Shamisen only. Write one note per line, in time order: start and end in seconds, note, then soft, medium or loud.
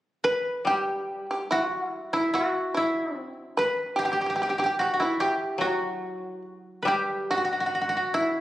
0.24 0.64 B4 medium
0.67 1.26 G4 medium
1.31 1.50 G4 soft
1.51 1.69 E4 medium
1.69 2.10 F#4 medium
2.13 2.33 E4 medium
2.35 2.73 F#4 medium
2.74 3.13 E4 medium
3.13 3.33 C4 medium
3.57 3.95 B4 medium
3.96 4.03 G4 medium
4.05 4.11 G4 soft
4.12 4.19 G4 soft
4.21 4.25 G4 soft
4.26 4.33 G4 soft
4.36 4.41 G4 soft
4.42 4.48 G4 soft
4.49 4.55 G4 soft
4.59 4.64 G4 soft
4.66 4.71 G4 soft
4.81 4.99 F#4 soft
5.02 5.19 E4 soft
5.20 5.58 G4 medium
5.61 6.42 F#4 soft
6.87 7.27 G4 soft
7.31 8.11 F#4 medium
8.14 8.41 E4 soft